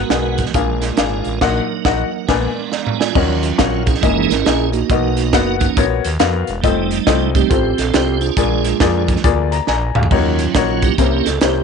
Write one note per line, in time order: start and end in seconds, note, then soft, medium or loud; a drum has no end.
0.00 0.34 G#2 medium
0.00 0.52 G#3 medium
0.00 0.52 B3 medium
0.00 0.52 F#4 medium
0.00 0.54 A#4 medium
0.10 0.47 B1 medium
0.10 0.41 B3 medium
0.10 0.41 G#4 medium
0.10 0.41 A#4 medium
0.10 0.41 F#5 medium
0.10 snare medium
0.10 closed hi-hat medium
0.38 kick medium
0.38 closed hi-hat medium
0.46 snare soft
0.54 0.91 A#1 loud
0.54 1.22 A#2 medium
0.54 1.40 G#3 medium
0.54 1.40 D4 medium
0.54 0.85 D4 medium
0.54 1.40 F4 medium
0.54 0.85 G#4 medium
0.54 1.40 A#4 medium
0.54 0.85 A#4 medium
0.54 0.85 F5 medium
0.54 kick loud
0.54 closed hi-hat medium
0.82 snare soft
0.82 closed hi-hat medium
0.97 1.22 G#1 loud
0.97 1.28 D4 medium
0.97 1.28 G#4 medium
0.97 1.28 A#4 medium
0.97 1.29 F5 medium
0.97 snare loud
0.97 closed hi-hat medium
1.25 1.39 A1 medium
1.25 closed hi-hat soft
1.41 1.60 A#1 loud
1.41 1.60 A#2 medium
1.41 2.27 F#3 medium
1.41 2.27 A#3 medium
1.41 2.27 D#4 medium
1.41 1.61 D#4 medium
1.41 1.60 F#4 medium
1.41 1.60 A#4 medium
1.41 1.84 A#4 medium
1.41 1.61 F#5 medium
1.41 kick medium
1.41 snare medium
1.41 crash medium
1.85 2.04 A#1 loud
1.85 2.04 D#4 medium
1.85 2.04 F#4 medium
1.85 2.12 F#4 medium
1.85 2.04 A#4 medium
1.85 2.12 D#5 medium
1.85 2.04 F#5 medium
1.85 kick medium
1.85 snare medium
2.12 2.26 A#4 medium
2.12 2.54 F#5 medium
2.27 2.48 A#1 loud
2.27 2.48 A#2 medium
2.27 3.13 G#3 medium
2.27 3.13 B3 medium
2.27 3.13 D4 medium
2.27 2.48 D4 medium
2.27 2.70 A#4 medium
2.27 2.48 A#4 medium
2.27 2.48 B4 medium
2.27 2.48 G#5 medium
2.27 kick medium
2.27 snare medium
2.27 crash medium
2.56 2.70 D5 medium
2.71 2.98 D5 soft
2.71 2.97 F5 medium
2.71 2.98 A#5 medium
2.71 snare soft
2.87 mid tom medium
2.99 3.15 F4 medium
2.99 3.41 D5 medium
2.99 3.14 G#5 medium
2.99 snare medium
3.15 3.52 D#2 loud
3.15 3.83 D#3 medium
3.15 3.83 F#3 medium
3.15 3.83 C#4 medium
3.15 3.46 C#4 medium
3.15 3.83 F4 medium
3.15 3.46 F#4 medium
3.15 3.46 A#4 medium
3.15 3.46 D#5 medium
3.15 kick loud
3.15 crash medium
3.43 closed hi-hat medium
3.58 3.96 A#1 medium
3.58 3.89 C#4 medium
3.58 3.89 F#4 medium
3.58 3.89 A#4 medium
3.58 3.89 F5 medium
3.58 kick medium
3.58 snare loud
3.58 closed hi-hat medium
3.86 4.70 C#4 medium
3.86 4.70 E4 medium
3.86 4.31 G#4 loud
3.86 kick medium
3.86 closed hi-hat medium
3.95 snare soft
4.01 4.26 F#1 medium
4.01 4.34 E3 medium
4.01 4.35 G#3 soft
4.01 4.34 A#3 soft
4.01 4.33 A#3 medium
4.01 4.35 D#4 medium
4.01 4.33 E4 medium
4.01 4.33 G#4 medium
4.01 4.33 D#5 medium
4.01 kick loud
4.01 closed hi-hat medium
4.28 4.44 G#1 medium
4.28 4.45 A#4 loud
4.28 snare soft
4.28 closed hi-hat medium
4.44 4.83 A#1 loud
4.44 4.76 A#3 medium
4.44 4.76 E4 medium
4.44 4.71 G#4 medium
4.44 4.77 G#4 medium
4.44 4.77 D#5 medium
4.44 snare loud
4.44 closed hi-hat medium
4.73 5.56 A#3 medium
4.73 5.56 D#4 medium
4.73 5.56 F#4 medium
4.73 closed hi-hat medium
4.90 5.35 B1 loud
4.90 5.57 B2 medium
4.90 5.20 B3 medium
4.90 5.20 F#4 medium
4.90 5.20 A#4 medium
4.90 5.21 D#5 medium
4.90 kick loud
4.90 closed hi-hat medium
5.17 closed hi-hat medium
5.33 5.70 F#1 loud
5.33 5.64 B3 medium
5.33 5.63 F#4 medium
5.33 5.64 A#4 medium
5.33 5.64 F#5 medium
5.33 kick medium
5.33 snare loud
5.33 closed hi-hat medium
5.59 5.85 A#3 medium
5.59 5.86 C#4 medium
5.59 5.86 D#4 medium
5.59 kick medium
5.59 closed hi-hat medium
5.77 6.00 A#1 medium
5.77 6.07 B3 medium
5.77 6.07 F#4 medium
5.77 6.07 A#4 medium
5.77 6.07 C#5 medium
5.77 kick loud
5.77 closed hi-hat medium
6.05 6.18 D#2 medium
6.05 closed hi-hat medium
6.20 6.44 F2 loud
6.20 6.50 B3 medium
6.20 6.50 F#4 medium
6.20 6.50 A#4 medium
6.20 6.50 F5 loud
6.20 snare loud
6.20 closed hi-hat medium
6.47 6.61 E1 loud
6.47 closed hi-hat soft
6.62 7.00 F1 loud
6.62 7.30 G3 medium
6.62 7.30 A3 medium
6.62 6.94 C4 medium
6.62 7.31 D#4 medium
6.62 6.94 F4 medium
6.62 6.94 A4 medium
6.62 6.94 D#5 medium
6.62 kick loud
6.62 closed hi-hat medium
6.91 closed hi-hat medium
7.07 7.44 C2 loud
7.07 7.37 C4 medium
7.07 7.37 F4 medium
7.07 7.37 A4 medium
7.07 7.37 D#5 medium
7.07 kick medium
7.07 snare loud
7.07 closed hi-hat medium
7.35 7.49 G3 medium
7.35 7.49 A3 soft
7.35 8.18 C4 medium
7.35 7.49 D#4 medium
7.35 7.80 G4 medium
7.35 kick medium
7.35 closed hi-hat medium
7.50 7.74 A1 medium
7.50 7.80 C4 medium
7.50 7.80 F4 medium
7.50 7.80 A4 medium
7.50 7.81 C5 medium
7.50 kick loud
7.50 closed hi-hat medium
7.78 7.91 A#1 medium
7.78 7.94 A4 medium
7.78 snare soft
7.78 closed hi-hat medium
7.93 8.31 C2 medium
7.93 8.24 C4 medium
7.93 8.24 F4 medium
7.93 8.22 G4 loud
7.93 8.24 A4 medium
7.93 8.24 C5 medium
7.93 snare loud
7.93 closed hi-hat medium
8.21 8.36 D4 medium
8.21 8.37 F4 medium
8.21 9.04 G#4 loud
8.21 closed hi-hat soft
8.37 8.74 A#1 loud
8.37 9.04 A#2 medium
8.37 9.07 G#3 medium
8.37 8.67 A#3 medium
8.37 9.08 D4 medium
8.37 8.67 F4 medium
8.37 9.08 F4 medium
8.37 8.67 G#4 medium
8.37 8.67 D5 medium
8.37 kick medium
8.37 closed hi-hat medium
8.64 closed hi-hat medium
8.80 9.17 F2 medium
8.80 9.11 A#3 medium
8.80 9.11 F4 medium
8.80 9.11 G#4 medium
8.80 9.11 D5 medium
8.80 kick medium
8.80 snare loud
8.80 closed hi-hat medium
9.08 9.22 G#3 medium
9.08 9.23 D4 soft
9.08 9.23 F4 medium
9.08 kick medium
9.08 closed hi-hat medium
9.16 snare soft
9.24 9.61 D2 loud
9.24 9.54 A#3 medium
9.24 9.54 F4 medium
9.24 9.54 G#4 medium
9.24 9.54 D5 medium
9.24 kick loud
9.24 closed hi-hat medium
9.52 9.66 A#5 medium
9.52 closed hi-hat medium
9.67 9.91 A#1 loud
9.67 9.94 D5 medium
9.67 9.94 G#5 medium
9.67 9.94 A#5 medium
9.67 snare medium
9.95 10.09 D2 loud
9.95 10.37 G#4 medium
9.95 10.10 F5 medium
9.95 mid tom medium
10.03 floor tom medium
10.11 10.48 D#2 loud
10.11 10.78 D#3 medium
10.11 10.93 F#3 medium
10.11 10.42 A#3 medium
10.11 10.94 C#4 medium
10.11 10.42 D#4 medium
10.11 10.94 F4 medium
10.11 10.42 F#4 medium
10.11 10.42 C#5 medium
10.11 kick loud
10.11 crash medium
10.39 closed hi-hat medium
10.54 10.91 A#1 medium
10.54 10.85 A#3 medium
10.54 10.85 D#4 medium
10.54 10.85 F#4 medium
10.54 10.85 C#5 medium
10.54 kick medium
10.54 snare loud
10.54 closed hi-hat medium
10.82 10.97 A#3 medium
10.82 10.97 E4 medium
10.82 11.27 G4 loud
10.82 kick medium
10.82 closed hi-hat medium
10.98 11.22 C2 loud
10.98 11.64 C3 medium
10.98 11.30 A#3 medium
10.98 11.28 A#3 medium
10.98 11.30 C#4 soft
10.98 11.28 C#4 medium
10.98 11.30 E4 medium
10.98 11.28 E4 medium
10.98 11.28 C5 medium
10.98 kick loud
10.98 closed hi-hat loud
11.26 11.39 C#2 medium
11.26 11.40 A4 loud
11.26 snare soft
11.26 closed hi-hat medium
11.41 11.64 C2 medium
11.41 11.64 A#3 medium
11.41 11.64 C#4 medium
11.41 11.64 E4 medium
11.41 11.64 G4 medium
11.41 11.64 C5 medium
11.41 snare loud
11.41 closed hi-hat medium